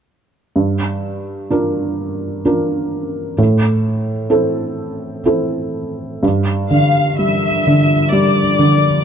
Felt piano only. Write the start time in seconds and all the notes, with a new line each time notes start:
0.56 G2
1.50 D4 F4 A#4
2.45 D4 F4 A#4
3.38 A2
4.30 C4 E4 A4
5.25 C4 E4 A4
6.23 G2
6.71 D3
7.19 G3
7.67 D3
8.12 G3
8.59 D3